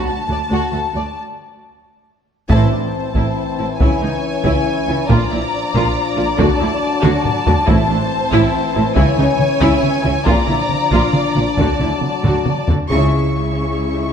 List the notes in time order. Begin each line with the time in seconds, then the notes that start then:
Already playing: A5
0.28 D2 F#4 D5
0.50 D2 F#4
0.72 D2 F#4 A4
0.94 D2 F#4 D5
2.49 A1 A2 E3 C4 E4 C5 A5, taiko
2.71 A1 A2 D4
3.15 A1 A2 E4, taiko
3.58 A1 A2 E4
3.80 C#2 C#3 C#4 E4 C#5 G#5, taiko
4.02 C#2 C#3 D#4
4.44 C#2 C#3 E4, taiko
4.88 C#2 C#3 E4
5.09 A#1 A#2 F3 D4 F4 D5 A#5, taiko
5.31 A#1 A#2 E4
5.74 A#1 A#2 F4, taiko
6.16 A#1 A#2 F4
6.38 D2 D3 F#3 F#4 A5, taiko
6.60 D2 D3 E4
7.02 D2 D3 F#4, taiko mid
7.25 taiko low-mid
7.47 D2 D3 F#4, taiko low
7.66 A1 A2 E3 C4 E4 C5, taiko
7.89 A1 A2 D4
8.32 A1 A2 E4, taiko
8.75 A1 A2 E4
8.96 C#2 C#3 C#4 E4 C#5 G#5, taiko
9.18 C#2 C#3 D#4, taiko mid
9.40 taiko mid
9.61 C#2 C#3 E4, taiko
9.83 taiko mid
10.03 C#2 C#3 E4, taiko mid
10.26 A#1 A#2 F3 D4 F4 D5 A#5, taiko
10.48 A#1 A#2 E4, taiko mid
10.69 taiko mid
10.91 A#1 A#2 F4, taiko
11.13 taiko mid
11.35 A#1 A#2 F4, taiko mid
11.56 D2 D3 F#3 F#4 A5, taiko
11.80 D2 D3 E4, taiko mid
12.02 taiko mid
12.23 D2 D3 F#4, taiko low-mid
12.46 taiko mid
12.68 D2 D3 F#4, taiko low
12.89 C#2 C#3 G#3 E4 G#4 E5 C#6, taiko